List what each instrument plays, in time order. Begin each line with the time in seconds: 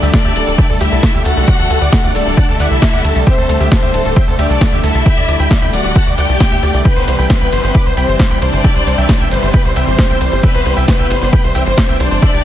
Already playing: analog synth pad D3 G3 A3, violin section D4 D5
0.02 analog synth bass D2, supersaw synth G4 E5, closed hi-hat, maracas
0.13 violin section D4 D5, supersaw synth A4, kick, snare, closed hi-hat, maracas
0.25 analog synth bass D2, supersaw synth G4 E5, closed hi-hat
0.36 analog synth bass D1, supersaw synth A4, open hi-hat, ride, maracas
0.47 analog synth bass D1, supersaw synth A4, closed hi-hat, maracas
0.58 supersaw synth E5 G5, kick, closed hi-hat, maracas
0.69 analog synth bass D2, supersaw synth A4, closed hi-hat
0.81 analog synth bass D2, violin section E4 E5, supersaw synth G4 E5, open hi-hat, ride, maracas
0.92 analog synth bass C2, supersaw synth A4, closed hi-hat, maracas
1.03 supersaw synth A4, kick, snare, closed hi-hat, maracas
1.14 analog synth bass D2, supersaw synth G4 E5, closed hi-hat
1.25 analog synth bass D2, violin section F#4 F#5, supersaw synth A4, open hi-hat, ride, maracas
1.36 analog synth bass C2, supersaw synth A4, closed hi-hat, maracas
1.48 supersaw synth D5 F#5, kick, closed hi-hat, maracas
1.59 analog synth bass D2, supersaw synth A4, open hi-hat
1.70 analog synth bass D2, supersaw synth A4, open hi-hat, ride, maracas
1.81 analog synth bass D2, supersaw synth D5 F#5, closed hi-hat, maracas
1.92 supersaw synth A4, kick, snare, closed hi-hat, maracas
2.04 analog synth bass D2, supersaw synth D5 F#5, closed hi-hat
2.15 analog synth bass D1, violin section D4 D5, supersaw synth A4, open hi-hat, ride, maracas
2.26 analog synth bass D1, supersaw synth A4, closed hi-hat, maracas
2.37 supersaw synth F#5 A5, kick, closed hi-hat, maracas
2.48 analog synth bass D2, supersaw synth A4, closed hi-hat
2.60 analog synth bass D2, violin section E4 E5, supersaw synth D5 F#5, open hi-hat, ride, maracas
2.71 analog synth bass C2, supersaw synth A4, closed hi-hat, maracas
2.82 supersaw synth A4, kick, snare, closed hi-hat, maracas
2.93 analog synth bass D2, supersaw synth D5 F#5, closed hi-hat
3.04 analog synth bass D2, supersaw synth A4, open hi-hat, ride, maracas
3.15 analog synth bass C2, supersaw synth A4, closed hi-hat, maracas
3.26 violin section C4 C5, supersaw synth G4 E5, kick, closed hi-hat, maracas
3.38 analog synth bass D2, supersaw synth A4, closed hi-hat
3.49 analog synth bass D2, supersaw synth A4, open hi-hat, ride, maracas
3.60 analog synth bass D2, supersaw synth G4 E5, closed hi-hat, maracas
3.71 violin section C4 C5, supersaw synth A4, kick, snare, closed hi-hat, maracas
3.83 analog synth bass D2, supersaw synth G4 E5, closed hi-hat
3.94 analog synth bass D1, supersaw synth A4, open hi-hat, ride, maracas
4.05 analog synth bass D1, supersaw synth A4, closed hi-hat, maracas
4.16 supersaw synth E5 G5, kick, closed hi-hat, maracas
4.28 analog synth bass D2, supersaw synth A4, closed hi-hat
4.39 analog synth bass D2, violin section D4 D5, supersaw synth G4 E5, open hi-hat, ride, maracas
4.50 analog synth bass C2, supersaw synth A4, closed hi-hat, maracas
4.61 supersaw synth A4, kick, snare, closed hi-hat, maracas
4.72 analog synth bass D2, supersaw synth G4 E5, closed hi-hat
4.83 analog synth bass D2, violin section E4 E5, supersaw synth A4, open hi-hat, ride, maracas
4.94 analog synth bass C2, supersaw synth A4, closed hi-hat, maracas
5.06 supersaw synth G5 B5, kick, closed hi-hat, maracas
5.17 analog synth bass D2, supersaw synth D5, open hi-hat
5.28 analog synth bass D2, supersaw synth D5, open hi-hat, ride, maracas
5.39 analog synth bass D2, supersaw synth G5 B5, closed hi-hat, maracas
5.50 supersaw synth D5, kick, snare, closed hi-hat, maracas
5.62 analog synth bass D2, supersaw synth G5 B5, closed hi-hat
5.73 analog synth bass D1, violin section F#4 F#5, supersaw synth D5, open hi-hat, ride, maracas
5.84 analog synth bass D1, supersaw synth D5, closed hi-hat, maracas
5.95 supersaw synth F#5 A5, kick, closed hi-hat, maracas
6.07 analog synth bass D2, supersaw synth D5, closed hi-hat
6.17 analog synth bass D2, violin section G4 G5, supersaw synth D5 F#5, open hi-hat, ride, maracas
6.29 analog synth bass C2, supersaw synth D5, closed hi-hat, maracas
6.40 supersaw synth D5, kick, snare, closed hi-hat, maracas
6.52 analog synth bass D2, supersaw synth G4 E5, closed hi-hat
6.63 analog synth bass D2, supersaw synth D5, open hi-hat, ride, maracas
6.74 analog synth bass C2, supersaw synth D5, closed hi-hat, maracas
6.85 analog synth pad C3 E3 G3, violin section B3 B4, supersaw synth G5 B5, kick, closed hi-hat, maracas
6.96 analog synth bass C2, supersaw synth C5, closed hi-hat
7.08 analog synth bass C2, supersaw synth C5, open hi-hat, ride, maracas
7.19 analog synth bass C2, supersaw synth G5 B5, closed hi-hat, maracas
7.30 violin section B3 B4, supersaw synth C5, kick, snare, closed hi-hat, maracas
7.41 analog synth bass C2, supersaw synth G5 B5, closed hi-hat
7.52 analog synth bass G1, supersaw synth C5, open hi-hat, ride, maracas
7.64 analog synth bass G1, supersaw synth C5, closed hi-hat, maracas
7.74 supersaw synth B5 D6, kick, closed hi-hat, maracas
7.86 analog synth bass C2, supersaw synth C5, closed hi-hat
7.97 analog synth bass C2, violin section C4 C5, supersaw synth G5 B5, open hi-hat, ride, maracas
8.08 analog synth bass G1, supersaw synth C5, closed hi-hat, maracas
8.19 supersaw synth C5, kick, snare, closed hi-hat, maracas
8.31 analog synth bass C2, supersaw synth G5 B5, closed hi-hat
8.42 analog synth bass C2, violin section D4 D5, supersaw synth C5, open hi-hat, ride, maracas
8.53 analog synth bass G1, supersaw synth C5, closed hi-hat, maracas
8.64 supersaw synth E5 G5, kick, closed hi-hat, maracas
8.75 analog synth bass C2, supersaw synth C5, open hi-hat
8.87 analog synth bass C2, supersaw synth C5, open hi-hat, ride, maracas
8.98 analog synth bass C2, supersaw synth E5 G5, closed hi-hat, maracas
9.09 supersaw synth C5, kick, snare, closed hi-hat, maracas
9.20 analog synth bass C2, supersaw synth E5 G5, closed hi-hat
9.31 analog synth bass G1, violin section B3 B4, supersaw synth C5, open hi-hat, ride, maracas
9.42 analog synth bass G1, supersaw synth C5, closed hi-hat, maracas
9.54 supersaw synth G5 B5, kick, closed hi-hat, maracas
9.65 analog synth bass C2, supersaw synth C5, closed hi-hat
9.76 analog synth bass C2, violin section C4 C5, supersaw synth E5 G5, open hi-hat, ride, maracas
9.87 analog synth bass G1, supersaw synth C5, closed hi-hat, maracas
9.98 supersaw synth C5, kick, snare, closed hi-hat, maracas
10.10 analog synth bass C2, supersaw synth E5 G5, closed hi-hat
10.21 analog synth bass C2, supersaw synth C5, open hi-hat, ride, maracas
10.32 analog synth bass G1, supersaw synth C5, closed hi-hat, maracas
10.43 violin section B3 B4, supersaw synth E5 G5, kick, closed hi-hat, maracas
10.54 analog synth bass C2, supersaw synth C5, closed hi-hat
10.65 analog synth bass C2, supersaw synth C5, open hi-hat, ride, maracas
10.77 analog synth bass C2, supersaw synth E5 G5, closed hi-hat, maracas
10.88 violin section B3 B4, supersaw synth C5, kick, snare, closed hi-hat, maracas
10.99 analog synth bass C2, supersaw synth E5 G5, closed hi-hat
11.10 analog synth bass G1, supersaw synth C5, open hi-hat, ride, maracas
11.21 analog synth bass G1, supersaw synth C5, closed hi-hat, maracas
11.33 supersaw synth G5 B5, kick, closed hi-hat, maracas
11.44 analog synth bass C2, supersaw synth C5, closed hi-hat
11.54 analog synth bass C2, violin section C4 C5, supersaw synth E5 G5, open hi-hat, ride, maracas
11.66 analog synth bass G1, supersaw synth C5, closed hi-hat, maracas
11.78 supersaw synth C5, kick, snare, closed hi-hat, maracas
11.89 analog synth bass C2, supersaw synth E5 G5, closed hi-hat
12.00 analog synth bass C2, violin section D4 D5, supersaw synth C5, open hi-hat, ride, maracas
12.11 analog synth bass G1, supersaw synth C5, closed hi-hat, maracas
12.22 supersaw synth C5 E5, kick, closed hi-hat, maracas
12.34 analog synth bass C2, supersaw synth G4, open hi-hat